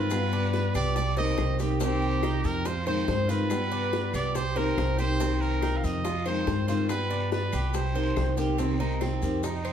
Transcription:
Already playing: upright bass G2, steel-string acoustic guitar D#3 C4, cuban tres F4, trumpet B4
0.10 steel-string acoustic guitar G3 B3 F4, high bongo, long guiro, claves, maracas
0.32 cuban tres D4, maracas
0.53 high bongo, short guiro, maracas
0.74 upright bass C2, cuban tres G4, trumpet D5, high bongo, short guiro, claves, maracas
0.96 trumpet D5, muted steel-string acoustic guitar stroke, high bongo, long guiro, maracas
1.17 steel-string acoustic guitar D#3 A#3 C4 G4, cuban tres C5, trumpet D#5, high bongo, maracas
1.38 upright bass C2, steel-string acoustic guitar D#3 A#3 C4 G4, high bongo, low bongo, short guiro, claves, maracas
1.59 steel-string acoustic guitar D#3 A#3 C4 G4, cuban tres G4, high bongo, short guiro, maracas
1.80 steel-string acoustic guitar C3 D#3 A#3 C4 G4, cuban tres C4, trumpet G4, high bongo, long guiro, maracas
2.02 maracas
2.23 cuban tres D#4, high bongo, short guiro, claves, maracas
2.44 upright bass F2, trumpet A#4, short guiro, maracas
2.65 cuban tres F4, trumpet C5, muted steel-string acoustic guitar stroke, high bongo, long guiro, maracas
2.86 steel-string acoustic guitar D#3 G#3 C4 F4, cuban tres C5, trumpet C5, claves, maracas
3.07 upright bass G2, steel-string acoustic guitar D#3 G#3 C4 F4, high bongo, low bongo, short guiro, maracas
3.28 steel-string acoustic guitar D#3 G#3 C4 F4, cuban tres F4, trumpet B4, short guiro, maracas
3.50 steel-string acoustic guitar G3 B3 F4, high bongo, long guiro, claves, maracas
3.72 cuban tres D4, maracas
3.92 high bongo, short guiro, maracas
4.13 upright bass C2, cuban tres G4, trumpet D5, high bongo, short guiro, claves, maracas
4.35 trumpet C5, muted steel-string acoustic guitar stroke, high bongo, long guiro, maracas
4.56 steel-string acoustic guitar D#3 A#3 C4 G4, trumpet A#4, cuban tres C5, high bongo, maracas
4.77 upright bass C2, steel-string acoustic guitar D#3 A#3 C4 G4, high bongo, low bongo, short guiro, claves, maracas
4.98 steel-string acoustic guitar D#3 A#3 C4 G4, cuban tres G4, trumpet C5, high bongo, short guiro, maracas
5.20 steel-string acoustic guitar C3 D#3 A#3 C4 G4, cuban tres C4, high bongo, long guiro, maracas
5.41 trumpet A#4, maracas
5.62 cuban tres D#4, high bongo, short guiro, claves, maracas
5.77 trumpet F5
5.84 upright bass F2, trumpet D#5, short guiro, maracas
6.04 cuban tres F4, muted steel-string acoustic guitar stroke, high bongo, long guiro, maracas
6.26 steel-string acoustic guitar D#3 G#3 C4 F4, cuban tres C5, trumpet C5, claves, maracas
6.46 upright bass G2, steel-string acoustic guitar D#3 G#3 C4 F4, high bongo, low bongo, short guiro, maracas
6.68 steel-string acoustic guitar D#3 G#3 C4 F4, cuban tres F4, trumpet C5, short guiro, maracas
6.88 steel-string acoustic guitar G3 B3 F4, trumpet B4, high bongo, long guiro, claves, maracas
7.11 cuban tres D4, maracas
7.32 trumpet B4, high bongo, short guiro, maracas
7.53 upright bass C2, cuban tres G4, high bongo, short guiro, claves, maracas
7.73 trumpet C5, muted steel-string acoustic guitar stroke, high bongo, long guiro, maracas
7.94 steel-string acoustic guitar D#3 A#3 C4 G4, cuban tres C5, high bongo, maracas
8.16 upright bass C2, steel-string acoustic guitar D#3 A#3 C4 G4, high bongo, low bongo, short guiro, claves, maracas
8.37 steel-string acoustic guitar D#3 A#3 C4 G4, cuban tres G4, high bongo, short guiro, maracas
8.57 steel-string acoustic guitar C3 D#3 A#3 C4 G4, cuban tres C4, high bongo, long guiro, maracas
8.79 steel-string acoustic guitar A#3 C4 G4, cuban tres D#4, maracas
9.01 steel-string acoustic guitar D#3 A#3 C4 G4, cuban tres C4, high bongo, short guiro, claves, maracas
9.22 upright bass F2, steel-string acoustic guitar D#3 A#3 C4 G4, short guiro, maracas
9.43 cuban tres D#4, trumpet D#4, muted steel-string acoustic guitar stroke, high bongo, long guiro, maracas
9.65 cuban tres C4, claves, maracas

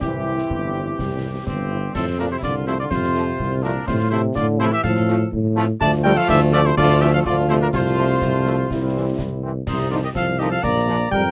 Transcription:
0.01 tuba C2, trombone section E3 C4, euphonium E4, woodwind section G4, cornet G4, concert bass drum, snare
0.25 french horn section C4 E4
0.38 snare
0.50 tuba G1, concert bass drum
0.74 french horn section C4 E4
0.99 tuba C2, concert bass drum, snare
1.23 french horn section C4 E4
1.46 tuba G1, euphonium G2, woodwind section C4, cornet G4, concert bass drum, snare
1.70 french horn section C4 E4
1.94 tuba F2, euphonium A2, woodwind section C4, cornet A4, concert bass drum, snare, crash
2.07 snare
2.18 euphonium A#2, trombone section F3 A3, french horn section A3 C4 F4, woodwind section D4, cornet A#4, snare
2.31 euphonium C3, woodwind section E4, cornet C5
2.43 tuba C2, euphonium D3, woodwind section F4, cornet D5, concert bass drum, snare
2.67 euphonium C3, trombone section F3 A3, french horn section A3 C4 F4, woodwind section E4, cornet C5, snare
2.79 euphonium D3, woodwind section F4, cornet D5
2.90 tuba F2, euphonium C3, woodwind section F4, cornet C5, concert bass drum, snare
3.03 snare
3.15 trombone section F3 A3, french horn section A3 C4 F4, snare
3.39 tuba C2, concert bass drum
3.63 euphonium A#2, trombone section F3 A3, french horn section A3 C4 F4, woodwind section D4, cornet A#4, snare
3.87 tuba A2, euphonium C3, woodwind section F4, cornet C5, concert bass drum, snare, crash
4.00 snare
4.10 euphonium C3, trombone section F3 A3, french horn section F3 C4 F4, woodwind section E4, cornet C5, snare
4.35 tuba A2, euphonium D3, woodwind section F4, cornet D5, concert bass drum, snare
4.59 euphonium C3, trombone section F3 A3, french horn section F3 C4 F4, woodwind section E4, cornet C5, snare
4.72 euphonium E3, woodwind section G4, cornet E5
4.83 tuba A2, euphonium F3, woodwind section A4, cornet F5, concert bass drum, snare
4.96 snare
5.07 trombone section F3 A3, french horn section F3 C4 F4, snare
5.32 tuba A2, concert bass drum
5.55 trombone section F3 A3, french horn section F3 C4 F4, snare
5.81 tuba D2, french horn section F3 A3 F4, euphonium A3, woodwind section D5, cornet A5, concert bass drum, snare, crash
5.93 snare
6.03 trombone section F3 A3, euphonium G3, woodwind section A#4, cornet G5, snare
6.16 euphonium F3, woodwind section A4, cornet F5
6.27 tuba D2, euphonium E3, woodwind section G4, cornet E5, concert bass drum, snare
6.52 euphonium D3, trombone section F3 A3, woodwind section F4, cornet D5, snare
6.65 euphonium C3, woodwind section E4, cornet C5
6.77 tuba D2, euphonium D3, french horn section F3 A3 F4, woodwind section F4, cornet D5, concert bass drum, snare
6.89 snare
7.00 euphonium E3, trombone section F3 A3, woodwind section G4, cornet E5, snare
7.12 euphonium F3, woodwind section A4, cornet F5
7.25 tuba D2, euphonium D3, french horn section F3 A3 F4, woodwind section F4, cornet D5, concert bass drum
7.49 euphonium C3, trombone section F3 A3, woodwind section E4, cornet C5, snare
7.61 euphonium A#2, woodwind section D4, cornet A#4
7.73 tuba C2, euphonium C3, french horn section F3 A3 F4, woodwind section F4, cornet C5, concert bass drum, snare, crash
7.85 snare
7.98 trombone section F3 A3, snare
8.22 tuba C2, concert bass drum, snare
8.46 trombone section F3 A3, snare
8.70 tuba C2, french horn section G3 C4 E4, concert bass drum, snare
8.96 trombone section E3 C4
9.18 tuba C2, concert bass drum, snare
9.43 trombone section E3 C4
9.67 tuba C2, euphonium C3, woodwind section D#4, cornet C5, concert bass drum, snare, crash
9.80 snare
9.91 euphonium D3, french horn section F3 A3 D#4, trombone section F3 D#4, woodwind section F4, cornet D5, snare
10.03 euphonium D#3, woodwind section G4, cornet D#5
10.14 tuba C2, euphonium F3, woodwind section A4, cornet F5, concert bass drum, snare
10.39 euphonium D#3, french horn section F3 A3 D#4, trombone section F3 D#4, woodwind section G4, cornet D#5, snare
10.50 euphonium F3, woodwind section A4, cornet F5
10.63 tuba A#1, euphonium A#3, woodwind section D5, cornet A#5, concert bass drum, snare
10.76 snare
10.88 trombone section F3 D4, french horn section F3 A#3 D4, snare
11.11 tuba F2, euphonium G3, woodwind section A#4, cornet G5, concert bass drum

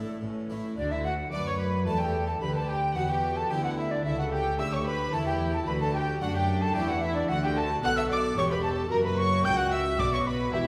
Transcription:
Already playing: harpsichord A2 A3 D4 E4, viola section A3, violin section E4, flute A4
0.21 double bass section A1, harpsichord A2, cello section A2, viola section E3, violin section C#4 A4
0.49 double bass section A1, harpsichord A2 A3 C#4 E4, cello section A2, viola section A3, violin section E4
0.77 double bass section D2, harpsichord D3, cello section D3, violin section D4 D5, viola section F#4, flute D5
0.91 violin section E4 E5, flute E5
1.04 violin section F#4 F#5, flute F#5
1.31 double bass section F#2, harpsichord F#3 A3 D4 F#4, cello section F#3, viola section B4, violin section D5 D6, flute D6
1.46 violin section C#5 C#6, flute C#6
1.59 violin section B4 B5, flute B5
1.86 double bass section E2, harpsichord E3 A3 D4 F#4, cello section E3, violin section A4 A5, viola section A4, flute A5
2.00 violin section G4 G5, flute G5
2.27 violin section A4 A5, flute A5
2.41 double bass section D2, cello section D3, harpsichord D3, viola section G4, violin section B4 B5, flute B5
2.55 violin section A4 A5, flute A5
2.69 violin section G4 G5, flute G5
2.95 double bass section E2, cello section E3, harpsichord E3 B3 E4, viola section F#4, violin section F#4 F#5, flute F#5
3.09 violin section G4 G5, flute G5
3.36 violin section A4 A5, flute A5
3.50 double bass section D2, cello section D3, harpsichord D3 B3 E4, viola section E4, violin section G4 G5, flute G5
3.63 violin section F#4 F#5, flute F#5
3.77 violin section E4 E5, flute E5
3.91 violin section D4 D5, flute D5
4.04 double bass section C#2, cello section C#3, harpsichord C#3, violin section E4 E5, viola section A4, flute E5
4.19 violin section F#4 F#5, flute F#5
4.31 violin section G4 G5, flute G5
4.58 double bass section D2, harpsichord D3 A3 E4, cello section D3, viola section G4, violin section E5 E6, flute E6
4.71 violin section C#5 C#6, flute C#6
4.86 violin section B4 B5, flute B5
5.13 double bass section E2, harpsichord E3 A3 E4, cello section E3, viola section E4, violin section A4 A5, flute A5
5.26 violin section G4 G5, flute G5
5.54 violin section A4 A5, flute A5
5.67 double bass section D2, harpsichord D3, cello section D3, viola section F#4, violin section B4 B5, flute B5
5.80 violin section A4 A5, flute A5
5.94 violin section G4 G5, flute G5
6.21 double bass section F#2, cello section F#3, harpsichord F#3 A3 D4 F#4, viola section D4, violin section F#4 F#5, flute F#5
6.34 violin section G4 G5, flute G5
6.62 violin section A4 A5, flute A5
6.74 double bass section E2, harpsichord E3 A3 D4 F#4, cello section E3, viola section E4, violin section G4 G5, flute G5
6.88 violin section F#4 F#5, flute F#5
7.01 violin section E4 E5, flute E5
7.14 violin section D4 D5, flute D5
7.29 double bass section D2, harpsichord D3, cello section D3, viola section F#4, violin section F#4 F#5, flute F#5
7.42 violin section G4 G5, flute G5
7.55 violin section A4 A5, flute A5
7.83 double bass section B1, harpsichord B2 B3 D4 F#4, cello section B2, viola section A4, violin section F#5 F#6, flute F#6
7.96 violin section E5 E6, flute E6
8.10 violin section D5 D6, flute D6
8.37 double bass section E1, cello section E2, harpsichord E2 C#4 G4, viola section G4, violin section C#5 C#6, flute C#6
8.51 violin section B4 B5, flute B5
8.63 violin section A4 A5, flute A5
8.90 double bass section F#1, harpsichord F#2, cello section F#2, viola section F#4, violin section A#4 A#5, flute A#5
9.04 violin section B4 B5, flute B5
9.18 violin section C#5 C#6, flute C#6
9.45 cello section C#2, double bass section C#2, harpsichord C#2 A#3 E4 F#4, violin section G5 G6, flute G6
9.58 violin section F#5 F#6, flute F#6
9.72 violin section E5 E6, flute E6
9.99 double bass section B1, harpsichord B2 B3 D4 F#4, cello section B2, viola section F#4, violin section D5 D6, flute D6
10.13 violin section C#5 C#6, flute C#6
10.27 violin section B4 B5, flute B5
10.53 double bass section E1, harpsichord E2, cello section E2, violin section E4 E5, viola section G4, flute E5

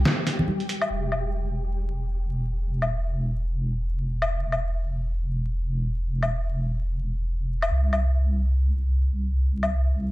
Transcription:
Already playing: synth texture G3 G4
0.05 snare
0.27 snare, closed hi-hat
0.39 low conga
0.48 high conga
0.60 closed hi-hat
0.69 closed hi-hat
0.82 low woodblock
0.90 wobble bass E1
1.12 low woodblock
2.82 low woodblock
4.22 low woodblock
4.52 low woodblock
6.23 low woodblock
7.62 low woodblock
7.71 wobble bass C2
7.93 low woodblock
9.63 low woodblock

